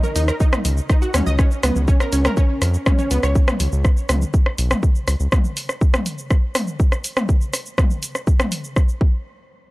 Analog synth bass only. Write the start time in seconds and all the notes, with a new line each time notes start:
0.16 D#2
0.65 C#2
1.14 D#2
1.26 C#2
1.63 C#2
1.76 C#2
2.12 C#2
2.62 F2
3.11 C#2
3.23 C#2
3.60 C#2
3.72 C#2
4.09 C#2
4.58 B1
5.08 C#2
5.20 C#2